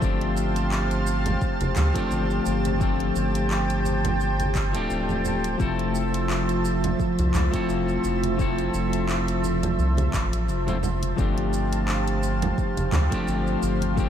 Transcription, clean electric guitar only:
0.00 1.90 F3 medium
0.00 1.91 A3 medium
0.00 1.91 C4 medium
0.00 1.92 D4 medium
0.04 1.92 G4 medium
1.94 2.76 F3 medium
1.94 2.77 A3 medium
1.94 2.77 C4 medium
1.94 2.78 D4 medium
1.98 2.78 G4 medium
2.79 4.69 F3 medium
2.79 4.69 A3 medium
2.79 4.70 C4 medium
2.79 4.71 D4 medium
2.79 4.71 G4 medium
4.73 5.55 F3 medium
4.73 5.56 A3 medium
4.73 5.56 C4 medium
4.73 5.57 D4 medium
4.77 5.57 G4 medium
5.58 7.48 F3 medium
5.58 7.48 A3 medium
5.58 7.49 C4 medium
5.58 7.49 E4 medium
5.62 7.50 A4 medium
7.51 8.34 F3 medium
7.51 8.35 A3 medium
7.51 8.35 C4 medium
7.51 8.36 E4 medium
7.56 8.36 A4 medium
8.37 10.27 F3 medium
8.37 10.28 A3 medium
8.37 10.28 C4 medium
8.37 10.29 E4 medium
8.41 10.29 A4 medium
10.67 10.76 F3 medium
10.67 10.76 A3 medium
10.67 10.77 C4 medium
10.67 10.77 E4 medium
10.67 10.77 C5 medium
11.16 13.06 F3 medium
11.16 13.07 A3 medium
11.16 13.07 C4 medium
11.16 13.08 D4 medium
11.16 13.08 G4 medium
13.10 13.93 F3 medium
13.10 13.93 A3 medium
13.10 13.94 C4 medium
13.10 13.94 D4 medium
13.14 13.95 G4 medium
13.95 14.09 F3 medium
13.95 14.09 A3 medium
13.95 14.09 C4 medium
13.95 14.09 D4 medium
14.00 14.09 G4 medium

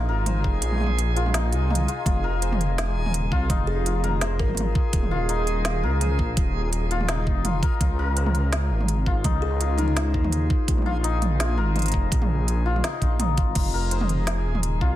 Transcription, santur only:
0.00 1.34 D#4 loud
0.00 1.16 F4 medium
0.00 0.26 C5 medium
0.09 2.23 A#4 loud
0.27 2.41 C5 medium
1.16 1.52 F4 loud
1.34 1.70 D#4 loud
1.52 1.88 F4 medium
1.70 3.49 D#4 medium
1.88 2.05 F4 medium
2.06 3.31 F4 medium
2.24 4.03 A#4 loud
2.42 4.21 C5 medium
3.32 3.86 F4 loud
3.50 5.29 D#4 loud
3.86 5.11 F4 medium
4.04 5.83 A#4 loud
4.21 6.01 C5 medium
5.11 5.65 F4 loud
5.29 7.09 D#4 loud
5.66 6.91 F4 medium
5.83 7.62 A#4 loud
6.01 8.16 C5 medium
6.91 7.45 F4 loud
7.09 9.24 D#4 loud
7.45 7.81 F4 medium
7.63 7.99 A#4 loud
7.81 9.06 F4 medium
7.99 9.78 A#4 loud
8.17 9.96 C5 medium
9.07 9.60 F4 loud
9.25 11.03 D#4 loud
9.60 10.86 F4 medium
9.78 11.57 A#4 loud
9.96 11.75 C5 medium
10.86 11.39 F4 loud
11.04 12.83 D#4 loud
11.40 12.65 F4 medium
11.58 13.73 A#4 loud
11.75 13.91 C5 medium
12.66 13.01 F4 loud
12.84 13.19 D#4 loud
13.02 13.37 F4 medium
13.20 14.96 D#4 medium
13.38 13.55 F4 medium
13.56 14.81 F4 medium
13.74 14.96 A#4 loud
13.92 14.96 C5 medium
14.81 14.96 F4 loud

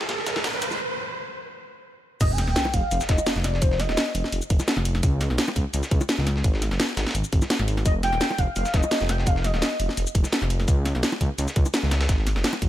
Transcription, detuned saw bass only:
0.09 0.17 C#2 loud
0.27 0.35 C#2 medium
0.54 0.78 C#2 loud
2.21 2.46 F1 loud
2.48 2.55 D#1 medium
2.74 2.82 F1 medium
2.91 3.00 F1 loud
3.09 3.17 F1 medium
3.36 3.61 F1 loud
3.62 3.88 F1 loud
3.89 3.96 D#1 loud
4.15 4.23 F1 medium
4.33 4.41 F1 loud
4.50 4.59 F1 medium
4.77 5.02 F1 loud
5.03 5.29 C#2 loud
5.30 5.38 B1 loud
5.56 5.65 C#2 medium
5.74 5.82 C#2 loud
5.91 6.00 C#2 medium
6.18 6.43 C#2 loud
6.44 6.70 G#1 loud
6.71 6.79 F#1 medium
6.97 7.06 G#1 medium
7.15 7.23 G#1 loud
7.33 7.41 G#1 medium
7.60 7.84 G#1 loud
7.86 8.11 F1 loud
8.12 8.20 D#1 loud
8.38 8.47 F1 medium
8.56 8.65 F1 loud
8.74 8.82 F1 medium
9.01 9.26 F1 loud
9.27 9.52 F1 loud
9.54 9.61 D#1 medium
9.80 9.88 F1 medium
9.97 10.06 F1 loud
10.15 10.23 F1 medium
10.42 10.67 F1 loud
10.68 10.93 C#2 loud
10.95 11.02 B1 loud
11.21 11.29 C#2 medium
11.38 11.47 C#2 loud
11.56 11.65 C#2 medium
11.83 12.08 C#2 loud
12.09 12.35 G#1 loud
12.36 12.43 F#1 loud
12.62 12.69 G#1 medium

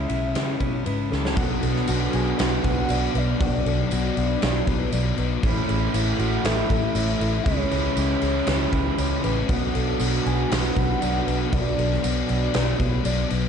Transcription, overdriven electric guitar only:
0.00 0.35 E3 medium
0.08 0.61 G#3 medium
0.08 0.60 C#4 medium
0.08 0.59 E4 medium
0.60 0.85 G#3 medium
0.60 0.86 C#4 medium
0.60 0.86 E4 medium
0.85 1.35 E3 medium
0.85 1.36 G#3 medium
0.85 1.36 C#4 medium
0.85 1.36 E4 medium
1.36 5.43 B2 medium
1.36 5.43 F#3 medium
1.36 5.44 B3 medium
1.36 5.44 D4 medium
1.36 5.45 F#4 medium
5.43 7.45 A2 medium
5.43 7.45 E3 medium
5.43 7.46 A3 medium
5.43 7.47 C#4 medium
5.43 7.47 E4 medium
7.45 9.48 C#3 medium
7.45 9.49 E3 medium
7.45 9.50 G#3 medium
7.45 9.50 C#4 medium
7.45 9.50 E4 medium
9.49 13.49 B2 medium
9.49 13.49 F#3 medium
9.49 13.49 B3 medium
9.49 13.49 D4 medium
9.49 13.49 F#4 medium

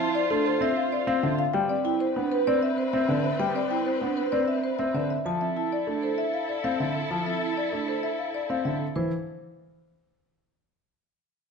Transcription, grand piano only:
0.31 0.50 A3 medium
0.61 0.81 C4 medium
1.07 1.28 C4 medium
1.23 1.43 D3 medium
1.54 1.74 G3 medium
2.16 2.36 B3 medium
2.47 2.67 C4 medium
2.93 3.13 C4 medium
3.08 3.29 D3 medium
3.39 3.60 G3 medium
4.01 4.21 B3 medium
4.33 4.53 C4 medium
4.79 4.99 C4 medium
4.94 5.14 D3 medium
5.25 5.45 F3 medium
5.87 6.07 A3 medium
6.64 6.84 C4 medium
6.80 7.00 D3 medium
7.11 7.31 F3 medium
7.72 7.93 A3 soft
8.50 8.70 C4 medium
8.65 8.85 D3 soft
8.96 9.10 E3 medium

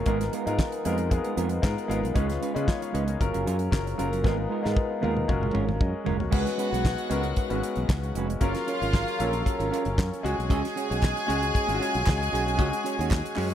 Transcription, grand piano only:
0.06 0.42 G#3 medium
0.06 0.42 B3 medium
0.06 0.42 D#4 medium
0.06 0.42 F4 medium
0.06 0.43 A#4 medium
0.46 0.81 G#3 medium
0.46 0.81 B3 medium
0.46 0.81 D#4 medium
0.46 0.81 F4 medium
0.46 0.82 A#4 loud
0.85 1.08 G#3 medium
0.85 1.09 B3 medium
0.85 1.09 D#4 medium
0.85 1.09 F4 medium
0.85 1.09 A#4 loud
1.10 1.58 G#3 medium
1.10 1.58 B3 medium
1.10 1.58 D#4 medium
1.10 1.58 F4 medium
1.10 1.18 G#4 medium
1.18 1.61 A#4 medium
1.62 1.86 G#3 medium
1.62 1.86 B3 medium
1.62 1.87 D#4 medium
1.62 1.87 F4 medium
1.62 1.87 A#4 medium
1.88 2.12 G#3 medium
1.88 2.13 B3 medium
1.88 2.13 D#4 medium
1.88 2.13 F4 medium
1.88 2.13 A#4 medium
2.15 2.51 G#3 medium
2.15 2.51 B3 medium
2.15 2.51 C#4 medium
2.15 2.51 F4 medium
2.15 2.52 B4 medium
2.55 2.89 G#3 medium
2.55 2.90 B3 medium
2.55 2.90 C#4 medium
2.55 2.90 F4 medium
2.55 2.68 B4 medium
2.67 2.81 A#4 soft
2.67 2.81 C#5 medium
2.82 2.94 C#5 medium
2.82 2.93 F5 medium
2.94 3.07 B4 soft
2.94 3.07 D#5 medium
3.09 3.20 A#4 medium
3.09 3.33 C#5 medium
3.19 3.67 F#3 medium
3.19 3.67 A#3 medium
3.19 3.67 C#4 medium
3.19 3.67 F4 medium
3.19 3.67 A#4 medium
3.71 3.95 F#3 medium
3.71 3.95 A#3 medium
3.71 3.95 C#4 medium
3.71 3.96 F4 medium
3.71 3.96 A#4 medium
3.98 4.21 F#3 medium
3.98 4.22 A#3 medium
3.98 4.22 C#4 medium
3.98 4.22 F4 medium
3.98 4.22 A#4 medium
4.24 4.59 G#3 medium
4.24 4.60 B3 medium
4.24 4.60 D#4 medium
4.24 4.60 F4 medium
4.24 4.60 A#4 medium
4.63 4.98 G#3 medium
4.63 4.98 B3 medium
4.63 4.98 D#4 medium
4.63 4.99 F4 medium
4.63 4.99 A#4 medium
5.02 5.26 G#3 medium
5.02 5.26 B3 medium
5.02 5.26 D#4 medium
5.02 5.26 F4 medium
5.02 5.26 A#4 medium
5.28 5.75 G#3 medium
5.28 5.76 C#4 medium
5.28 5.55 F4 medium
5.28 5.55 F#4 medium
5.28 5.55 A#4 medium
5.81 6.06 D#5 medium
6.06 6.19 A#4 medium
6.06 6.20 C#5 medium
6.20 6.32 F#4 medium
6.20 6.32 A#4 medium
6.32 7.03 G#3 medium
6.32 7.03 B3 medium
6.32 7.03 C#4 medium
6.32 7.04 F#4 medium
6.32 6.40 A#4 medium
6.40 7.07 B4 medium
7.10 7.46 G#3 medium
7.10 7.46 B3 medium
7.10 7.47 C#4 medium
7.10 7.47 F#4 medium
7.10 7.47 A#4 medium
7.50 8.32 G#3 medium
7.50 8.32 B3 medium
7.50 8.32 C#4 medium
7.50 8.33 F#4 medium
7.50 8.33 B4 medium
8.40 9.12 F#3 medium
8.40 9.12 A#3 medium
8.40 9.12 C#4 medium
8.40 9.12 F4 medium
8.40 9.12 A#4 medium
9.18 10.13 F#3 medium
9.18 10.14 A#3 medium
9.18 10.14 C#4 medium
9.18 10.14 F4 medium
9.18 9.27 A4 medium
9.27 10.17 A#4 medium
10.23 11.18 G#3 medium
10.23 11.18 C#4 medium
10.23 11.18 F#4 medium
11.27 11.63 G#3 medium
11.27 11.64 C#4 medium
11.27 11.64 F#4 medium
11.67 12.49 G#3 medium
11.67 12.50 C#4 medium
11.67 11.75 F4 medium
11.75 12.53 F#4 medium
12.58 13.29 G#3 medium
12.58 13.29 C#4 medium
12.58 13.29 F#4 loud
13.36 13.54 G#3 medium
13.36 13.54 C#4 medium
13.36 13.54 F#4 medium

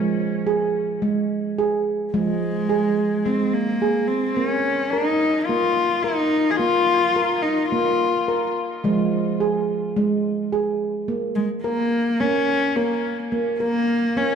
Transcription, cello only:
2.14 3.27 G#3 medium
3.25 3.55 C4 medium
3.53 4.09 A#3 medium
4.07 4.35 C4 medium
4.35 4.46 C4 medium
4.46 4.92 C#4 medium
4.91 5.47 D#4 medium
5.46 6.04 F4 medium
6.03 6.52 D#4 medium
6.51 6.58 G#4 medium
6.56 7.44 F4 loud
7.42 7.69 D#4 medium
7.70 8.51 F4 medium
11.35 11.48 G#3 medium
11.64 12.21 A#3 medium
12.20 12.77 C#4 medium
12.76 13.18 A#3 medium
13.59 14.18 A#3 medium
14.17 14.35 C#4 medium

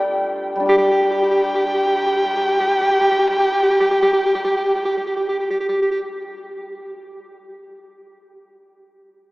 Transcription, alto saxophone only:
0.69 0.78 G4 medium
0.78 0.89 G4 medium
0.91 1.01 G4 medium
1.02 1.10 G4 medium
1.11 1.21 G4 medium
1.23 1.30 G4 medium
1.31 1.42 G4 medium
1.43 1.53 G4 medium
1.55 1.65 G4 medium
1.66 1.73 G4 medium
1.74 1.84 G4 medium
1.87 1.95 G4 medium
1.96 2.06 G4 medium
2.06 2.16 G4 medium
2.16 2.25 G4 medium
2.25 2.36 G4 medium
2.37 2.47 G4 medium
2.48 2.58 G4 medium
2.60 2.67 G4 medium
2.67 2.78 G4 medium
2.81 2.90 G4 medium
2.91 3.00 G4 medium
3.00 3.10 G4 medium
3.11 3.18 G4 medium
3.19 3.29 G4 medium
3.30 3.38 G4 medium
3.39 3.50 G4 medium
3.52 3.62 G4 medium
3.63 3.70 G4 medium
3.70 3.80 G4 medium
3.80 3.90 G4 medium
3.91 4.02 G4 medium
4.02 4.13 G4 medium
4.13 4.23 G4 medium
4.26 4.34 G4 medium
4.35 4.44 G4 medium
4.45 4.54 G4 medium
4.56 4.64 G4 medium
4.65 4.75 G4 medium
4.75 4.85 G4 medium
4.85 4.95 G4 medium
4.97 5.06 G4 medium
5.06 5.16 G4 medium
5.16 5.26 G4 medium
5.28 5.38 G4 medium
5.40 5.48 G4 medium
5.50 5.59 G4 medium
5.60 5.68 G4 medium
5.68 5.78 G4 medium
5.82 5.90 G4 medium
5.91 6.00 G4 medium

